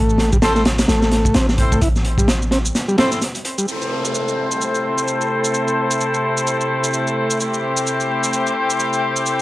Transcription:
0.00 0.85 A1 loud
0.00 0.31 A3 medium
0.09 shaker soft
0.18 snare medium
0.18 closed hi-hat medium
0.32 0.37 G3 medium
0.32 kick medium
0.32 shaker medium
0.42 0.62 C4 medium
0.42 0.62 E4 medium
0.42 0.62 A4 medium
0.42 0.53 A4 loud
0.42 0.62 C5 loud
0.42 snare loud
0.42 closed hi-hat medium
0.42 shaker soft
0.55 0.64 A3 loud
0.55 snare soft
0.55 shaker soft
0.65 snare loud
0.65 closed hi-hat medium
0.78 snare loud
0.78 closed hi-hat medium
0.78 shaker medium
0.88 1.31 A1 loud
0.88 1.34 A3 medium
0.88 snare loud
0.88 closed hi-hat medium
0.88 shaker soft
1.02 snare medium
1.02 shaker soft
1.11 snare soft
1.11 closed hi-hat medium
1.25 kick medium
1.25 shaker medium
1.34 1.78 A1 medium
1.34 1.46 C4 medium
1.34 snare loud
1.34 closed hi-hat medium
1.34 shaker soft
1.49 snare medium
1.49 shaker soft
1.58 1.78 C4 medium
1.58 1.78 E4 medium
1.58 1.78 A4 medium
1.58 1.78 C5 medium
1.58 kick medium
1.58 closed hi-hat medium
1.72 1.81 A3 medium
1.72 kick loud
1.72 shaker medium
1.81 2.71 A1 loud
1.81 1.89 E4 medium
1.81 kick loud
1.81 closed hi-hat medium
1.81 shaker soft
1.96 snare soft
1.96 shaker soft
2.04 closed hi-hat medium
2.18 2.28 G3 medium
2.18 kick medium
2.18 shaker medium
2.28 snare loud
2.28 closed hi-hat medium
2.28 shaker medium
2.42 shaker soft
2.51 2.58 C4 loud
2.51 snare soft
2.51 closed hi-hat medium
2.65 shaker medium
2.75 snare soft
2.75 closed hi-hat medium
2.75 shaker soft
2.88 2.96 G3 medium
2.88 shaker soft
2.98 3.11 C4 loud
2.98 3.18 C4 loud
2.98 3.18 E4 medium
2.98 3.18 A4 medium
2.98 3.18 C5 loud
2.98 snare loud
2.98 closed hi-hat medium
3.12 snare soft
3.12 shaker medium
3.22 snare soft
3.22 closed hi-hat medium
3.22 shaker medium
3.35 closed hi-hat soft
3.35 shaker soft
3.45 closed hi-hat medium
3.58 3.66 G3 medium
3.58 shaker medium
3.68 9.42 C3 medium
3.68 9.42 A3 medium
3.68 7.38 C4 medium
3.68 9.42 E4 medium
3.68 7.38 E4 medium
3.68 7.36 A4 medium
3.68 7.38 A4 medium
3.68 7.38 C5 medium
3.68 downlifter medium
3.68 shaker soft
3.82 shaker soft
4.05 shaker medium
4.15 shaker soft
4.28 shaker soft
4.51 shaker medium
4.61 shaker soft
4.75 shaker soft
4.98 shaker medium
5.08 shaker soft
5.21 shaker soft
5.44 shaker medium
5.54 shaker soft
5.68 shaker soft
5.91 shaker medium
6.01 shaker soft
6.14 shaker soft
6.37 shaker medium
6.47 shaker soft
6.61 shaker soft
6.84 shaker medium
6.94 shaker soft
7.07 shaker soft
7.30 shaker medium
7.40 9.42 C4 medium
7.40 9.42 E4 medium
7.40 9.42 G4 medium
7.40 9.42 A4 medium
7.40 9.42 C5 medium
7.40 shaker soft
7.54 shaker soft
7.77 shaker medium
7.87 shaker soft
8.00 shaker soft
8.23 shaker medium
8.33 shaker soft
8.47 shaker soft
8.70 shaker medium
8.80 shaker soft
8.93 shaker soft
9.16 shaker medium
9.26 shaker soft

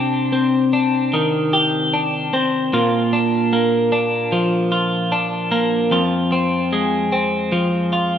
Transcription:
0.00 2.72 C3 medium
0.00 0.73 D4 medium
0.00 1.52 G4 medium
0.32 2.32 C4 soft
0.73 1.93 D4 medium
1.14 2.81 D#3 medium
1.53 2.73 G4 medium
1.94 3.12 D4 medium
2.33 2.81 C4 medium
2.73 5.93 A#2 medium
2.73 4.71 F4 medium
3.13 3.91 D4 medium
3.53 5.50 A#3 medium
3.92 5.11 D4 medium
4.32 7.52 F3 medium
4.72 5.92 F4 medium
5.12 6.00 D4 medium
5.52 6.00 A#3 medium
5.91 8.18 F2 medium
5.91 7.92 F4 medium
6.32 7.11 C4 medium
6.73 8.18 G#3 medium
7.12 8.18 C4 medium
7.52 8.18 F3 medium
7.93 8.18 F4 medium

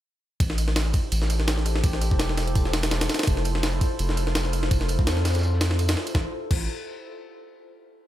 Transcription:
0.40 0.93 A1 loud
0.40 6.11 E4 medium
0.40 3.25 G4 medium
0.40 6.11 A4 medium
0.40 6.11 C5 medium
0.40 kick loud
0.40 ride medium
0.40 tambourine medium
0.50 snare soft
0.58 ride medium
0.58 tambourine medium
0.68 snare medium
0.76 snare loud
0.76 ride medium
0.76 tambourine medium
0.85 closed hi-hat soft
0.93 kick loud
0.93 ride medium
0.93 tambourine medium
1.12 1.82 A1 loud
1.12 ride medium
1.12 tambourine medium
1.22 snare medium
1.22 snare soft
1.30 ride medium
1.30 tambourine medium
1.40 snare soft
1.47 snare loud
1.47 ride medium
1.47 tambourine medium
1.58 snare soft
1.58 closed hi-hat soft
1.65 ride medium
1.65 tambourine medium
1.76 snare soft
1.84 2.13 A1 loud
1.84 kick loud
1.84 ride medium
1.84 tambourine medium
1.93 snare medium
1.93 closed hi-hat soft
2.01 ride medium
2.01 tambourine medium
2.11 3.08 E1 medium
2.11 kick medium
2.19 snare loud
2.19 ride medium
2.19 tambourine medium
2.29 snare medium
2.37 snare soft
2.37 ride medium
2.37 tambourine medium
2.47 ride soft
2.55 kick loud
2.55 ride medium
2.55 tambourine medium
2.65 snare soft
2.73 snare loud
2.73 ride medium
2.73 tambourine medium
2.83 snare loud
2.83 ride medium
2.91 snare loud
2.91 ride medium
2.91 tambourine medium
3.01 snare loud
3.01 ride medium
3.09 snare medium
3.09 snare loud
3.09 ride medium
3.09 tambourine medium
3.14 snare medium
3.14 ride medium
3.19 snare medium
3.19 ride medium
3.23 snare loud
3.23 ride medium
3.27 3.80 F1 loud
3.27 6.12 F4 medium
3.27 kick loud
3.27 ride medium
3.27 tambourine loud
3.37 snare soft
3.45 ride medium
3.45 tambourine medium
3.55 snare soft
3.63 snare loud
3.63 ride medium
3.63 tambourine medium
3.73 closed hi-hat soft
3.81 kick loud
3.81 ride medium
3.81 tambourine medium
3.99 4.70 F1 medium
3.99 ride medium
3.99 tambourine medium
4.09 snare soft
4.09 snare medium
4.17 ride medium
4.17 tambourine medium
4.27 snare medium
4.35 snare loud
4.35 ride medium
4.35 tambourine medium
4.45 snare soft
4.45 closed hi-hat soft
4.53 ride medium
4.53 tambourine medium
4.63 snare soft
4.71 5.00 F1 loud
4.71 kick loud
4.71 ride medium
4.71 tambourine medium
4.80 snare medium
4.80 closed hi-hat soft
4.88 ride medium
4.88 tambourine medium
4.99 5.96 F2 medium
4.99 kick loud
5.07 snare loud
5.07 ride medium
5.07 tambourine medium
5.17 snare soft
5.25 snare loud
5.25 snare soft
5.25 ride medium
5.25 tambourine medium
5.34 snare medium
5.34 ride soft
5.34 tambourine medium
5.39 snare loud
5.39 tambourine medium
5.43 tambourine medium
5.53 snare soft
5.61 snare loud
5.61 ride medium
5.61 tambourine medium
5.71 snare medium
5.79 ride medium
5.79 tambourine medium
5.88 snare loud
5.88 ride medium
5.88 tambourine medium
5.97 snare medium
6.07 ride medium
6.07 tambourine medium
6.15 6.25 A1 loud
6.15 kick loud
6.15 snare medium
6.51 6.67 A1 loud
6.51 kick loud
6.51 crash medium

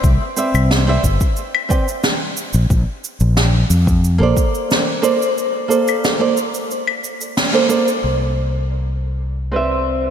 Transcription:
0.04 0.16 C2 medium
0.04 kick loud
0.04 cabasa medium
0.36 0.83 C4 medium
0.36 0.83 B4 medium
0.36 0.84 D5 medium
0.36 0.84 E5 medium
0.36 cabasa medium
0.54 0.97 C2 medium
0.54 cabasa medium
0.54 claves medium
0.71 snare medium
0.71 cabasa soft
0.87 1.02 C4 medium
0.87 1.03 B4 medium
0.87 1.03 D5 medium
0.87 1.04 E5 medium
1.04 1.16 G1 medium
1.04 kick soft
1.04 cabasa medium
1.21 kick loud
1.21 cabasa medium
1.37 cabasa soft
1.55 claves medium
1.69 1.86 C4 medium
1.69 1.86 B4 medium
1.69 1.87 D5 medium
1.69 1.87 G5 medium
1.69 kick loud
1.69 cabasa medium
1.88 cabasa medium
2.04 snare loud
2.04 cabasa soft
2.37 cabasa medium
2.53 2.66 A#1 loud
2.53 cabasa medium
2.70 2.83 A#1 medium
2.70 kick loud
2.70 cabasa soft
3.04 cabasa medium
3.20 3.63 A#1 medium
3.20 cabasa medium
3.37 snare loud
3.37 cabasa soft
3.70 4.22 F2 medium
3.70 cabasa medium
3.87 kick medium
3.87 cabasa medium
4.04 cabasa soft
4.18 4.32 A#1 loud
4.18 4.99 A#3 medium
4.18 4.99 A4 medium
4.18 5.00 C5 medium
4.23 5.01 D5 loud
4.37 kick loud
4.37 cabasa medium
4.55 cabasa medium
4.71 snare medium
4.71 cabasa soft
5.02 5.28 A#3 loud
5.02 5.28 A4 medium
5.02 5.29 C5 medium
5.02 5.29 D5 loud
5.02 cabasa medium
5.22 cabasa medium
5.38 cabasa soft
5.68 6.16 A#3 medium
5.68 6.16 A4 medium
5.68 6.17 C5 medium
5.68 6.17 D5 medium
5.68 cabasa medium
5.88 cabasa soft
5.88 claves medium
6.04 snare loud
6.04 cabasa soft
6.19 6.35 A#3 medium
6.19 6.36 A4 medium
6.19 6.36 C5 medium
6.19 6.36 D5 medium
6.37 cabasa medium
6.54 cabasa medium
6.71 cabasa soft
6.88 claves medium
7.04 cabasa medium
7.21 cabasa medium
7.37 snare medium
7.37 cabasa soft
7.53 7.66 A#3 medium
7.53 7.66 A4 medium
7.53 7.66 C5 medium
7.53 7.67 D5 medium
7.69 7.86 A#3 medium
7.69 7.86 A4 medium
7.69 7.86 C5 medium
7.69 7.87 D5 loud
7.69 cabasa medium
7.88 cabasa medium
8.04 10.10 C2 medium
9.52 10.10 C4 medium
9.52 10.10 B4 medium
9.52 10.10 D5 medium
9.56 10.10 E5 medium

